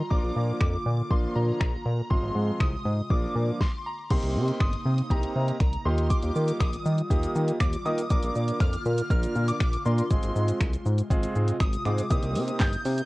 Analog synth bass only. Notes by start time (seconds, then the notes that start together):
0.11 A#1
0.23 A#1
0.36 A#2
0.61 F2
0.86 A#2
1.10 A#1
1.36 A#2
1.61 A#1
1.86 A#2
2.11 G#1
2.23 G#1
2.35 G#2
2.60 C2
2.86 G#2
3.10 A#1
3.35 A#2
4.11 C2
4.23 C2
4.35 C3
4.60 G1
4.86 C3
5.10 C2
5.36 C3
5.60 C2
5.86 D#2
6.23 D#2
6.36 D#3
6.60 A#1
6.86 D#3
7.10 D#2
7.35 D#3
7.60 D#2
7.86 D#3
8.10 A#1
8.23 A#1
8.36 A#2
8.60 F2
8.86 A#2
9.10 A#1
9.36 A#2
9.60 A#1
9.86 A#2
10.11 G#1
10.23 G#1
10.36 G#2
10.60 C2
10.86 G#2
11.10 G#1
11.36 G#2
11.60 G#1
11.86 G#2
12.11 C2
12.23 C2
12.35 C3
12.60 G1
12.85 C3